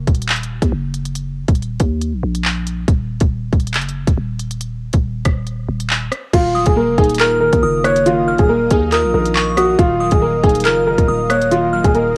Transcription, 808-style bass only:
0.08 0.60 D#1 loud
0.62 0.72 D#2 loud
0.72 1.45 F#1 loud
1.48 1.79 D#1 loud
1.80 2.15 D#2 loud
2.13 2.23 A#1 loud
2.23 2.85 A#1 loud
2.88 3.20 D#1 loud
3.21 3.52 D#1 loud
3.53 3.76 D#1 loud
3.74 4.06 F#1 loud
4.07 4.17 D#1 loud
4.18 4.91 D#1 loud
4.94 5.24 D#1 loud
5.26 5.67 D#1 loud
5.69 6.10 D#1 loud
6.33 6.65 D#1 loud
6.67 6.90 D#1 loud
6.88 6.98 F#1 loud
6.98 7.51 D#1 loud
7.53 7.62 D#2 loud
7.63 8.36 F#1 loud
8.39 8.70 D#1 loud
8.71 9.05 D#2 loud
9.04 9.13 A#1 loud
9.14 9.76 A#1 loud
9.79 10.10 D#1 loud
10.12 10.42 D#1 loud
10.44 10.67 D#1 loud
10.65 10.96 F#1 loud
10.98 11.08 D#1 loud
11.08 11.81 D#1 loud
11.84 12.15 D#1 loud

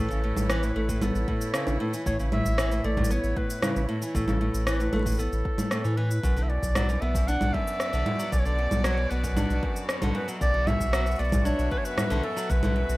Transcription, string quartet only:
0.00 7.29 E4 medium
0.00 7.10 B4 medium
0.00 6.24 C#5 medium
6.24 12.97 B2 medium
6.48 12.97 B3 medium
6.68 10.43 D5 medium
6.90 12.97 F#4 medium
10.28 12.97 E5 medium

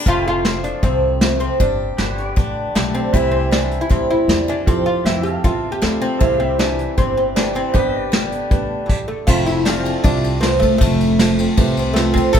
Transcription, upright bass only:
0.06 0.70 F1 medium
0.83 1.47 C2 medium
1.60 1.92 G1 medium
1.98 2.31 G1 medium
2.37 2.69 A1 medium
2.75 3.08 B1 medium
3.14 3.78 C2 medium
3.90 4.23 D2 medium
4.28 4.61 E2 medium
4.67 4.99 F2 medium
5.05 5.38 F2 medium
5.44 5.76 E2 medium
5.83 6.15 D2 loud
6.21 6.85 C2 medium
6.98 7.62 G1 medium
7.75 8.38 G1 medium
8.51 8.83 D2 medium
9.28 9.92 F1 medium
10.04 10.69 C2 medium
10.81 11.45 F1 loud
11.57 12.22 C2 medium
12.34 12.40 C2 medium

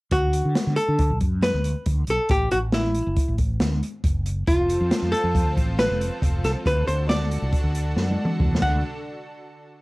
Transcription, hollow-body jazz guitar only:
0.12 0.76 F#4 medium
0.76 1.17 A4 medium
1.43 1.84 B4 medium
2.10 2.32 A4 medium
2.31 2.51 G4 medium
2.52 2.57 F#4 medium
2.74 3.35 E4 medium
4.48 5.09 F4 medium
5.12 5.53 A4 medium
5.79 6.19 B4 medium
6.45 6.50 A4 medium
6.67 6.87 B4 medium
6.87 7.09 C5 medium
7.09 7.71 D5 medium
8.62 8.82 F#5 medium

